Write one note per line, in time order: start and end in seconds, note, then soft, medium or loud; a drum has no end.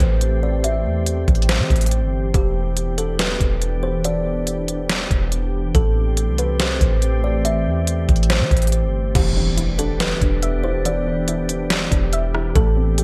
0.00 0.87 A1 loud
0.00 2.30 E3 medium
0.00 2.31 A3 medium
0.00 2.31 C4 medium
0.00 5.71 G4 medium
0.00 0.39 C5 medium
0.00 kick medium
0.00 closed hi-hat medium
0.21 closed hi-hat medium
0.43 0.63 D5 medium
0.64 1.04 E5 medium
0.64 closed hi-hat medium
0.85 1.26 E2 loud
1.06 closed hi-hat medium
1.28 1.61 A1 loud
1.28 kick loud
1.28 closed hi-hat soft
1.35 closed hi-hat medium
1.42 closed hi-hat medium
1.49 2.30 C5 medium
1.49 snare loud
1.49 closed hi-hat medium
1.60 1.70 E3 loud
1.70 2.04 A1 loud
1.70 kick medium
1.70 closed hi-hat soft
1.76 closed hi-hat medium
1.81 closed hi-hat medium
1.86 closed hi-hat medium
1.91 closed hi-hat medium
2.02 2.33 G1 loud
2.34 3.37 E1 loud
2.34 5.71 E3 medium
2.34 5.71 B3 medium
2.34 5.71 D4 medium
2.34 2.94 G4 loud
2.34 kick loud
2.34 closed hi-hat medium
2.77 closed hi-hat medium
2.98 3.18 A4 medium
2.98 closed hi-hat medium
3.19 3.79 B4 medium
3.19 snare loud
3.19 closed hi-hat medium
3.40 5.07 E1 loud
3.40 kick medium
3.40 closed hi-hat medium
3.62 closed hi-hat medium
3.83 4.03 C5 medium
4.04 4.45 D5 loud
4.04 closed hi-hat medium
4.47 closed hi-hat medium
4.68 closed hi-hat medium
4.89 snare loud
4.89 closed hi-hat medium
5.11 5.72 E1 loud
5.11 kick medium
5.11 closed hi-hat medium
5.32 closed hi-hat medium
5.75 6.29 A1 loud
5.75 9.12 E3 medium
5.75 9.12 A3 medium
5.75 9.12 C4 medium
5.75 9.12 G4 medium
5.75 6.35 A4 loud
5.75 kick loud
5.75 closed hi-hat medium
6.17 closed hi-hat medium
6.28 6.78 C2 medium
6.38 6.59 B4 medium
6.38 closed hi-hat medium
6.60 7.20 C5 medium
6.60 snare loud
6.60 closed hi-hat medium
6.81 7.68 A1 loud
6.81 kick medium
6.81 closed hi-hat medium
7.02 closed hi-hat medium
7.24 7.44 D5 medium
7.45 7.85 E5 medium
7.45 closed hi-hat medium
7.66 8.07 E2 loud
7.87 closed hi-hat medium
8.09 8.42 A1 loud
8.09 kick loud
8.09 closed hi-hat soft
8.16 closed hi-hat medium
8.23 closed hi-hat medium
8.30 9.11 C5 medium
8.30 snare loud
8.30 closed hi-hat medium
8.41 8.51 E3 loud
8.51 8.85 A1 loud
8.51 kick medium
8.51 closed hi-hat soft
8.57 closed hi-hat medium
8.62 closed hi-hat medium
8.67 closed hi-hat medium
8.72 closed hi-hat medium
8.83 9.14 G1 loud
9.15 10.18 E1 loud
9.15 13.04 E3 medium
9.15 9.99 E3 loud
9.15 12.52 B3 medium
9.15 12.52 D4 medium
9.15 13.04 G4 medium
9.15 9.75 G4 loud
9.15 kick loud
9.15 closed hi-hat medium
9.15 crash loud
9.15 impact medium
9.37 9.78 D4 medium
9.57 10.63 E4 medium
9.57 closed hi-hat medium
9.79 10.20 D4 medium
9.79 9.99 A4 medium
9.79 closed hi-hat medium
10.00 10.84 E3 medium
10.00 10.60 B4 medium
10.00 snare loud
10.00 closed hi-hat medium
10.21 11.88 E1 loud
10.21 11.06 D4 medium
10.21 kick medium
10.21 closed hi-hat medium
10.43 11.70 E5 loud
10.43 closed hi-hat medium
10.64 11.27 E4 medium
10.64 10.84 C5 medium
10.85 11.70 E3 loud
10.85 11.26 D5 loud
10.85 closed hi-hat medium
11.07 11.48 D4 medium
11.28 12.33 E4 medium
11.28 closed hi-hat medium
11.49 11.90 D4 medium
11.49 closed hi-hat medium
11.70 12.56 E3 medium
11.70 snare loud
11.70 closed hi-hat medium
11.91 12.53 E1 loud
11.91 12.55 D4 medium
11.91 kick medium
11.91 closed hi-hat medium
12.13 12.56 E5 loud
12.13 closed hi-hat medium
12.34 12.56 E4 medium
12.34 cross-stick medium
12.55 13.04 A1 loud
12.55 13.04 A3 loud
12.55 13.04 A3 medium
12.55 13.04 C4 medium
12.55 13.04 A4 loud
12.55 kick loud
12.55 closed hi-hat medium
12.77 13.04 C4 medium
12.98 13.04 G4 medium
12.98 closed hi-hat medium